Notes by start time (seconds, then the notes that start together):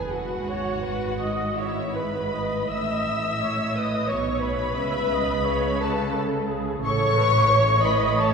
Already playing: F#1 F#2 G#4 B4 G#5
0.12 F#4 F#5
0.49 G#1 G#2 C#5
0.83 B4
1.20 D#5
1.57 E4 C#5 E5
1.96 B4 B5
2.35 D#5
2.71 A1 A2 E5 E6
3.43 C#5
3.76 B4 D#5 D#6
4.10 B1 B2 C#5 C#6
4.42 B4 B5
4.76 C#2 C#3 E5
5.12 D#5
5.46 C#5
5.81 A4 B4 A5
6.15 A4
6.49 G#4
6.83 A1 A2 A4 C#5 C#6
7.17 B4
7.51 C#5
7.84 B4 D#5 B5
8.19 A4 C#5 A5